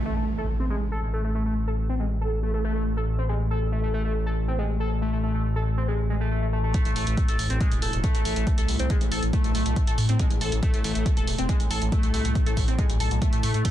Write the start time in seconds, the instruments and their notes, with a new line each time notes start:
Already playing: analog synth bass A1, ambient pad A2, impact
0.05 analog synth lead A3
0.16 analog synth lead A3
0.38 analog synth lead A4
0.60 analog synth lead C4
0.70 analog synth lead G#3
0.92 analog synth lead A4
1.13 analog synth lead A3
1.24 analog synth lead A3
1.35 analog synth lead A3
1.46 analog synth lead A3
1.67 analog synth lead A4
1.89 analog synth lead C4
2.00 analog synth lead G#3
2.21 analog synth lead A4
2.43 analog synth lead A3
2.54 analog synth lead A3
2.64 analog synth lead A3
2.75 analog synth lead A3
2.97 analog synth lead A4
3.18 analog synth lead C4
3.29 analog synth lead G#3
3.51 analog synth lead A4
3.72 analog synth lead A3
3.83 analog synth lead A3
3.94 analog synth lead A3
4.05 analog synth lead A3
4.26 analog synth lead A4
4.48 analog synth lead C4
4.59 analog synth lead G#3
4.80 analog synth lead A4
5.02 analog synth lead A3
5.13 analog synth lead A3
5.23 analog synth lead A3
5.34 analog synth lead A3
5.56 analog synth lead A4
5.77 analog synth lead C4
5.88 analog synth lead G#3
6.10 analog synth lead G#3
6.21 analog synth lead A3
6.31 analog synth lead A3
6.42 analog synth lead A3
6.53 analog synth lead A3
6.64 analog synth lead A3
6.74 ambient pad A2, analog synth lead A3, kick, closed hi-hat
6.85 analog synth bass A1, analog synth lead A3, closed hi-hat
6.96 analog synth bass A1, analog synth lead A3, open hi-hat
7.07 analog synth bass A1, analog synth lead A3, closed hi-hat
7.17 kick, closed hi-hat
7.28 analog synth bass A1, analog synth lead A4, closed hi-hat
7.39 analog synth bass A1, open hi-hat
7.50 analog synth bass A1, analog synth lead C4, closed hi-hat
7.61 analog synth lead G#3, kick, closed hi-hat
7.72 analog synth bass E1, closed hi-hat
7.82 analog synth bass E1, analog synth lead A4, open hi-hat
7.93 analog synth bass E1, closed hi-hat
8.04 analog synth lead A3, kick, closed hi-hat
8.15 analog synth bass A1, analog synth lead A3, closed hi-hat
8.25 analog synth bass A1, analog synth lead A3, open hi-hat
8.36 analog synth bass A1, analog synth lead A3, closed hi-hat
8.47 kick, closed hi-hat
8.58 analog synth bass C2, analog synth lead A4, closed hi-hat
8.68 analog synth bass C2, open hi-hat
8.79 analog synth bass C2, analog synth lead C4, closed hi-hat
8.90 analog synth lead G#3, kick, closed hi-hat
9.01 analog synth bass A1, closed hi-hat
9.12 analog synth bass A1, analog synth lead A4, open hi-hat
9.23 analog synth bass A1, closed hi-hat
9.33 analog synth lead A3, kick, closed hi-hat
9.44 analog synth bass B1, analog synth lead A3, closed hi-hat
9.55 analog synth bass B1, analog synth lead A3, open hi-hat
9.66 analog synth bass B1, analog synth lead A3, closed hi-hat
9.76 kick, closed hi-hat
9.87 analog synth bass A2, analog synth lead A4, closed hi-hat
9.98 analog synth bass A2, open hi-hat
10.09 analog synth bass A2, analog synth lead C4, closed hi-hat
10.19 analog synth lead G#3, kick, closed hi-hat
10.31 analog synth bass A1, closed hi-hat
10.41 analog synth bass A1, analog synth lead A4, open hi-hat
10.52 analog synth bass A1, closed hi-hat
10.63 analog synth lead A3, kick, closed hi-hat
10.74 analog synth bass A1, analog synth lead A3, closed hi-hat
10.84 analog synth bass A1, analog synth lead A3, open hi-hat
10.95 analog synth bass A1, analog synth lead A3, closed hi-hat
11.06 kick, closed hi-hat
11.17 analog synth bass E1, analog synth lead A4, closed hi-hat
11.27 analog synth bass E1, open hi-hat
11.38 analog synth bass E1, analog synth lead C4, closed hi-hat
11.49 analog synth lead G#3, kick, closed hi-hat
11.60 analog synth bass A1, closed hi-hat
11.71 analog synth bass A1, analog synth lead A4, open hi-hat
11.82 analog synth bass A1, closed hi-hat
11.92 analog synth lead A3, kick, closed hi-hat
12.03 analog synth bass C2, analog synth lead A3, closed hi-hat
12.14 analog synth bass C2, analog synth lead A3, open hi-hat
12.25 analog synth bass C2, analog synth lead A3, closed hi-hat
12.35 kick, closed hi-hat
12.46 analog synth bass A1, analog synth lead A4, closed hi-hat
12.57 analog synth bass A1, kick, open hi-hat
12.68 analog synth bass A1, analog synth lead C4, closed hi-hat
12.79 analog synth lead G#3, kick, closed hi-hat
12.90 analog synth bass B1, closed hi-hat
13.00 analog synth bass B1, analog synth lead A4, open hi-hat
13.11 analog synth bass B1, closed hi-hat
13.22 analog synth lead A3, kick, closed hi-hat
13.33 analog synth bass A2, analog synth lead A3, closed hi-hat
13.43 analog synth bass A2, analog synth lead A3, open hi-hat
13.54 analog synth bass A2, analog synth lead A3, closed hi-hat
13.65 analog synth lead A3, kick, closed hi-hat, ride